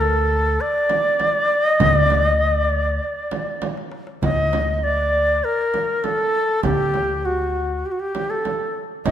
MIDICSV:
0, 0, Header, 1, 5, 480
1, 0, Start_track
1, 0, Tempo, 604230
1, 1436, Time_signature, 4, 2, 24, 8
1, 7239, End_track
2, 0, Start_track
2, 0, Title_t, "Ney"
2, 0, Program_c, 0, 77
2, 6, Note_on_c, 0, 69, 92
2, 483, Note_on_c, 0, 74, 105
2, 495, Note_off_c, 0, 69, 0
2, 1333, Note_off_c, 0, 74, 0
2, 1333, Note_on_c, 0, 75, 105
2, 1563, Note_off_c, 0, 75, 0
2, 1563, Note_on_c, 0, 74, 105
2, 1809, Note_off_c, 0, 74, 0
2, 1809, Note_on_c, 0, 75, 105
2, 2040, Note_off_c, 0, 75, 0
2, 2040, Note_on_c, 0, 74, 105
2, 2879, Note_off_c, 0, 74, 0
2, 3358, Note_on_c, 0, 75, 105
2, 3841, Note_on_c, 0, 74, 100
2, 3853, Note_off_c, 0, 75, 0
2, 4323, Note_on_c, 0, 70, 95
2, 4335, Note_off_c, 0, 74, 0
2, 4797, Note_on_c, 0, 69, 94
2, 4808, Note_off_c, 0, 70, 0
2, 5268, Note_off_c, 0, 69, 0
2, 5273, Note_on_c, 0, 67, 94
2, 5762, Note_on_c, 0, 66, 77
2, 5773, Note_off_c, 0, 67, 0
2, 6241, Note_on_c, 0, 67, 79
2, 6253, Note_off_c, 0, 66, 0
2, 6289, Note_on_c, 0, 66, 71
2, 6301, Note_off_c, 0, 67, 0
2, 6353, Note_on_c, 0, 67, 86
2, 6365, Note_off_c, 0, 66, 0
2, 6594, Note_on_c, 0, 69, 77
2, 6605, Note_off_c, 0, 67, 0
2, 6957, Note_off_c, 0, 69, 0
2, 7191, Note_on_c, 0, 75, 107
2, 7239, Note_off_c, 0, 75, 0
2, 7239, End_track
3, 0, Start_track
3, 0, Title_t, "Upright bass"
3, 0, Program_c, 1, 32
3, 0, Note_on_c, 1, 38, 107
3, 447, Note_off_c, 1, 38, 0
3, 1438, Note_on_c, 1, 38, 93
3, 2365, Note_off_c, 1, 38, 0
3, 3361, Note_on_c, 1, 38, 82
3, 4287, Note_off_c, 1, 38, 0
3, 5283, Note_on_c, 1, 38, 86
3, 6210, Note_off_c, 1, 38, 0
3, 7199, Note_on_c, 1, 38, 92
3, 7239, Note_off_c, 1, 38, 0
3, 7239, End_track
4, 0, Start_track
4, 0, Title_t, "Darbuka"
4, 477, Note_on_c, 9, 62, 27
4, 557, Note_off_c, 9, 62, 0
4, 713, Note_on_c, 9, 63, 70
4, 793, Note_off_c, 9, 63, 0
4, 956, Note_on_c, 9, 63, 70
4, 1035, Note_off_c, 9, 63, 0
4, 1433, Note_on_c, 9, 64, 101
4, 1512, Note_off_c, 9, 64, 0
4, 1680, Note_on_c, 9, 63, 70
4, 1759, Note_off_c, 9, 63, 0
4, 1920, Note_on_c, 9, 62, 26
4, 2000, Note_off_c, 9, 62, 0
4, 2161, Note_on_c, 9, 62, 26
4, 2240, Note_off_c, 9, 62, 0
4, 2399, Note_on_c, 9, 62, 27
4, 2478, Note_off_c, 9, 62, 0
4, 2635, Note_on_c, 9, 63, 67
4, 2715, Note_off_c, 9, 63, 0
4, 2874, Note_on_c, 9, 63, 55
4, 2954, Note_off_c, 9, 63, 0
4, 2998, Note_on_c, 9, 62, 65
4, 3078, Note_off_c, 9, 62, 0
4, 3111, Note_on_c, 9, 63, 71
4, 3190, Note_off_c, 9, 63, 0
4, 3233, Note_on_c, 9, 62, 73
4, 3312, Note_off_c, 9, 62, 0
4, 3354, Note_on_c, 9, 64, 83
4, 3434, Note_off_c, 9, 64, 0
4, 3475, Note_on_c, 9, 62, 23
4, 3554, Note_off_c, 9, 62, 0
4, 3594, Note_on_c, 9, 63, 65
4, 3673, Note_off_c, 9, 63, 0
4, 3718, Note_on_c, 9, 62, 25
4, 3797, Note_off_c, 9, 62, 0
4, 3953, Note_on_c, 9, 62, 26
4, 4032, Note_off_c, 9, 62, 0
4, 4078, Note_on_c, 9, 62, 27
4, 4158, Note_off_c, 9, 62, 0
4, 4559, Note_on_c, 9, 63, 62
4, 4638, Note_off_c, 9, 63, 0
4, 4798, Note_on_c, 9, 63, 60
4, 4877, Note_off_c, 9, 63, 0
4, 4915, Note_on_c, 9, 62, 25
4, 4995, Note_off_c, 9, 62, 0
4, 5159, Note_on_c, 9, 62, 25
4, 5239, Note_off_c, 9, 62, 0
4, 5281, Note_on_c, 9, 64, 85
4, 5360, Note_off_c, 9, 64, 0
4, 5400, Note_on_c, 9, 62, 27
4, 5479, Note_off_c, 9, 62, 0
4, 5523, Note_on_c, 9, 63, 60
4, 5603, Note_off_c, 9, 63, 0
4, 5647, Note_on_c, 9, 62, 27
4, 5726, Note_off_c, 9, 62, 0
4, 5882, Note_on_c, 9, 62, 26
4, 5962, Note_off_c, 9, 62, 0
4, 6005, Note_on_c, 9, 62, 26
4, 6084, Note_off_c, 9, 62, 0
4, 6479, Note_on_c, 9, 63, 58
4, 6559, Note_off_c, 9, 63, 0
4, 6716, Note_on_c, 9, 63, 57
4, 6796, Note_off_c, 9, 63, 0
4, 6842, Note_on_c, 9, 62, 24
4, 6922, Note_off_c, 9, 62, 0
4, 7088, Note_on_c, 9, 62, 24
4, 7168, Note_off_c, 9, 62, 0
4, 7204, Note_on_c, 9, 64, 83
4, 7239, Note_off_c, 9, 64, 0
4, 7239, End_track
5, 0, Start_track
5, 0, Title_t, "Frame drum"
5, 710, Note_on_c, 9, 64, 75
5, 790, Note_off_c, 9, 64, 0
5, 950, Note_on_c, 9, 64, 71
5, 1029, Note_off_c, 9, 64, 0
5, 1430, Note_on_c, 9, 64, 101
5, 1509, Note_off_c, 9, 64, 0
5, 1670, Note_on_c, 9, 64, 73
5, 1750, Note_off_c, 9, 64, 0
5, 2633, Note_on_c, 9, 64, 72
5, 2712, Note_off_c, 9, 64, 0
5, 2874, Note_on_c, 9, 64, 78
5, 2953, Note_off_c, 9, 64, 0
5, 3358, Note_on_c, 9, 64, 90
5, 3437, Note_off_c, 9, 64, 0
5, 3599, Note_on_c, 9, 64, 73
5, 3679, Note_off_c, 9, 64, 0
5, 4558, Note_on_c, 9, 64, 69
5, 4637, Note_off_c, 9, 64, 0
5, 4797, Note_on_c, 9, 64, 64
5, 4876, Note_off_c, 9, 64, 0
5, 5270, Note_on_c, 9, 64, 95
5, 5349, Note_off_c, 9, 64, 0
5, 5511, Note_on_c, 9, 64, 64
5, 5591, Note_off_c, 9, 64, 0
5, 6472, Note_on_c, 9, 64, 68
5, 6552, Note_off_c, 9, 64, 0
5, 6714, Note_on_c, 9, 64, 62
5, 6793, Note_off_c, 9, 64, 0
5, 7194, Note_on_c, 9, 64, 97
5, 7239, Note_off_c, 9, 64, 0
5, 7239, End_track
0, 0, End_of_file